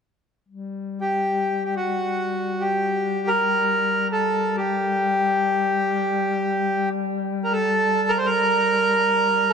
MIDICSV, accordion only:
0, 0, Header, 1, 2, 480
1, 0, Start_track
1, 0, Key_signature, -2, "minor"
1, 0, Tempo, 500000
1, 9149, End_track
2, 0, Start_track
2, 0, Title_t, "Accordion"
2, 0, Program_c, 0, 21
2, 967, Note_on_c, 0, 67, 58
2, 1570, Note_off_c, 0, 67, 0
2, 1584, Note_on_c, 0, 67, 47
2, 1676, Note_off_c, 0, 67, 0
2, 1694, Note_on_c, 0, 66, 66
2, 2501, Note_on_c, 0, 67, 63
2, 2525, Note_off_c, 0, 66, 0
2, 3144, Note_on_c, 0, 70, 82
2, 3156, Note_off_c, 0, 67, 0
2, 3912, Note_off_c, 0, 70, 0
2, 3956, Note_on_c, 0, 69, 75
2, 4380, Note_off_c, 0, 69, 0
2, 4388, Note_on_c, 0, 67, 74
2, 6616, Note_off_c, 0, 67, 0
2, 7144, Note_on_c, 0, 70, 62
2, 7223, Note_on_c, 0, 69, 90
2, 7224, Note_off_c, 0, 70, 0
2, 7766, Note_on_c, 0, 70, 95
2, 7791, Note_off_c, 0, 69, 0
2, 7853, Note_on_c, 0, 72, 73
2, 7854, Note_off_c, 0, 70, 0
2, 7925, Note_on_c, 0, 70, 101
2, 7935, Note_off_c, 0, 72, 0
2, 9115, Note_on_c, 0, 69, 87
2, 9149, Note_off_c, 0, 69, 0
2, 9149, Note_off_c, 0, 70, 0
2, 9149, End_track
0, 0, End_of_file